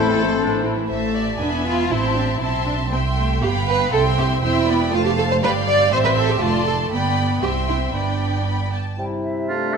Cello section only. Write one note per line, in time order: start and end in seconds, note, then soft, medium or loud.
0.00 0.61 A2 medium
1.40 1.64 D4 medium
1.66 1.91 F4 medium
1.91 2.16 E4 medium
2.16 2.24 D4 medium
2.41 2.90 C4 medium
3.42 3.50 G4 medium
3.67 3.92 B4 medium
3.92 4.00 A4 medium
4.17 4.25 G4 medium
4.42 4.92 E4 medium
4.92 5.05 F4 medium
5.05 5.10 G4 medium
5.18 5.23 A4 medium
5.31 5.36 C5 medium
5.43 5.51 B4 medium
5.68 5.92 D5 medium
5.92 5.97 C5 medium
6.05 6.10 B4 medium
6.17 6.29 A4 medium
6.30 6.42 G4 medium
6.41 6.67 F4 medium
6.67 6.75 A4 medium
7.42 7.50 G4 medium
7.68 7.76 E4 medium
7.94 8.45 D4 medium